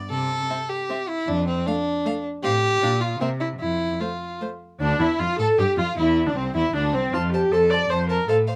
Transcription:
Already playing: D5
0.10 C3 A4
0.50 C4 E5
0.69 G4
0.89 C4 E5
1.09 E4
1.28 F2 D4
1.47 C4
1.66 A3 D4 F5
2.05 A3 F5
2.43 A2 C4 G4 F5
2.82 A#2 D4 F5
3.01 F4
3.20 C3 A#3 C4 E5
3.40 E4
3.60 F2 E4
4.00 A3 F4 C5
4.40 A3 C5
4.80 D2 D4
4.99 E2 E4
5.19 F2 F4
5.39 A2 A4
5.58 G2 G4
5.77 F2 F4
5.97 E2 E4
6.26 D2 D4
6.36 C2 C4
6.55 E2 E4
6.74 D2 D4
6.94 C2 C4
7.13 F2 F4 C5 A5
7.32 G4 C5 A5
7.52 F2 A4 C5 A5
7.70 C5 D5 A5
7.90 F2 C5 A5
8.09 A#4 C5 A5
8.28 A2 A4 C5 F5
8.47 C5 F5

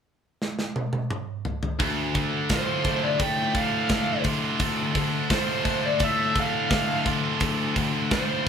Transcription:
0.42 snare
0.59 snare
0.76 high tom
0.93 high tom
1.10 mid tom
1.45 floor tom
1.63 floor tom
1.79 D2, kick, open hi-hat
2.14 D3, kick, open hi-hat
2.49 A2 F4 C5, kick, snare, open hi-hat
2.83 D3 A3, kick, open hi-hat
3.03 D5
3.18 A2 A3 G5, kick, open hi-hat
3.55 A2 D3 F5, kick, open hi-hat
3.89 D3 A3, kick, snare, open hi-hat
4.24 D3 F4, kick, open hi-hat
4.60 D2, kick, open hi-hat
4.95 D3, kick, open hi-hat
5.30 A2 F4 C5, kick, snare, open hi-hat
5.64 D3 A3, kick, open hi-hat
5.85 D5
6.00 A2 A3 E5, kick, open hi-hat
6.35 A2 D3, kick, open hi-hat
6.40 F5
6.69 D3 A3, kick, snare, open hi-hat
7.06 D3 F4, kick, open hi-hat
7.40 D2, kick, open hi-hat
7.76 D3, kick, open hi-hat
8.11 A2 F4 C5, kick, snare, open hi-hat
8.45 A3

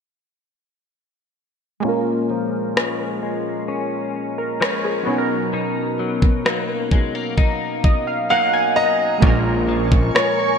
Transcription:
1.80 A#2 G#3 A#3
1.84 C#4 F4
1.88 A#4
2.30 F3
2.76 F3 G#3 C#4, cross-stick
3.22 G#3
3.68 C#4
4.38 A#4
4.61 F3 G#3 C#4 C#5, cross-stick
4.84 G#4
5.03 B2 F#3 B3
5.07 C#4 D#4
5.12 G#4
5.18 A#4
5.53 B2 D#4
5.99 F#3
6.22 kick
6.45 F#3 A#3 D#4, cross-stick
6.91 G#3, kick
7.15 A#3
7.38 D#4, kick
7.84 D#5, kick
8.07 F5
8.30 F#3 A#3 D#4 F5 F#5
8.53 G#5
8.76 D#5 A#5
9.18 G#3 A#3
9.22 A#1 A#2 C#4 F4 A#4 G#5 C#6, kick
9.26 A#4
9.69 F3
9.92 kick
10.15 C#5, cross-stick

